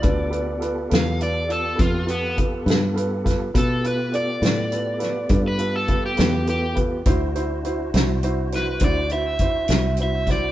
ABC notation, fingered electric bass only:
X:1
M:12/8
L:1/8
Q:3/8=68
K:G
V:1 name="Fingered electric bass" clef=bass
D,,3 E,,3 =F,,3 G,,3 | B,,3 A,,3 G,,3 E,,3 | D,,3 C,,3 D,,3 C,,3 |]